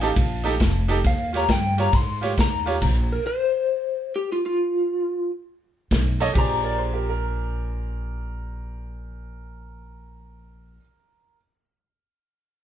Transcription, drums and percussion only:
0.01 snare soft
0.01 ride medium
0.16 kick medium
0.16 ride medium
0.46 snare soft
0.46 ride medium
0.60 kick medium
0.60 snare loud
0.60 ride medium
0.89 snare soft
0.89 ride medium
1.04 kick medium
1.04 snare soft
1.04 ride medium
1.34 snare soft
1.34 ride medium
1.48 kick medium
1.48 snare loud
1.48 ride medium
1.78 snare soft
1.78 ride medium
1.93 kick medium
1.93 snare soft
1.93 ride medium
2.23 snare soft
2.23 ride medium
2.38 kick medium
2.38 snare medium
2.38 ride medium
2.67 snare soft
2.67 ride medium
2.82 kick medium
2.82 crash medium
2.82 ride medium
5.91 kick medium
5.91 snare medium
5.91 ride medium
6.20 snare soft
6.20 ride medium
6.35 kick medium
6.35 crash medium

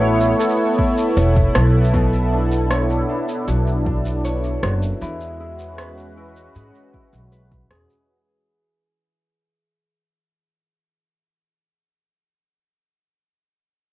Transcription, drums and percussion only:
0.21 shaker medium
0.40 shaker medium
0.50 shaker soft
0.79 kick medium
0.98 shaker medium
1.17 shaker medium
1.36 kick loud
1.36 shaker soft
1.55 cross-stick medium
1.84 shaker medium
1.94 kick loud
1.94 shaker medium
2.13 shaker soft
2.52 shaker medium
2.71 cross-stick medium
2.71 shaker medium
2.90 shaker soft
3.29 shaker medium
3.48 shaker medium
3.67 shaker soft
3.86 kick medium
4.05 shaker medium
4.25 shaker medium
4.44 shaker soft
4.63 cross-stick medium
4.82 shaker medium
5.02 shaker medium
5.21 shaker soft
5.59 shaker medium
5.78 cross-stick medium
5.78 shaker medium
5.98 shaker soft
6.36 shaker medium
6.55 shaker medium
6.75 shaker soft
6.94 kick medium
7.13 shaker medium
7.32 shaker medium
7.52 kick loud
7.52 shaker soft
7.71 cross-stick medium
7.90 shaker medium

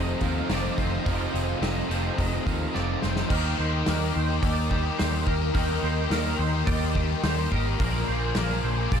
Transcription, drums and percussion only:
0.21 kick medium
0.21 open hi-hat medium
0.50 snare loud
0.50 open hi-hat medium
0.78 kick medium
0.78 open hi-hat soft
1.06 kick loud
1.06 open hi-hat medium
1.35 open hi-hat medium
1.63 snare loud
1.63 open hi-hat medium
1.91 open hi-hat medium
2.18 kick medium
2.18 open hi-hat medium
2.47 kick medium
2.47 open hi-hat medium
2.75 snare medium
3.02 snare medium
3.16 snare medium
3.30 kick loud
3.30 crash loud
3.86 snare loud
3.86 open hi-hat medium
4.43 kick loud
4.43 open hi-hat medium
4.71 kick medium
4.99 snare loud
4.99 open hi-hat medium
5.27 kick medium
5.55 kick loud
5.55 open hi-hat medium
6.11 snare loud
6.11 open hi-hat medium
6.67 kick loud
6.67 open hi-hat medium
6.95 kick medium
7.24 snare loud
7.24 open hi-hat medium
7.52 kick medium
7.80 kick loud
7.80 open hi-hat medium
8.35 snare loud
8.35 open hi-hat medium
8.92 kick loud
8.92 open hi-hat medium

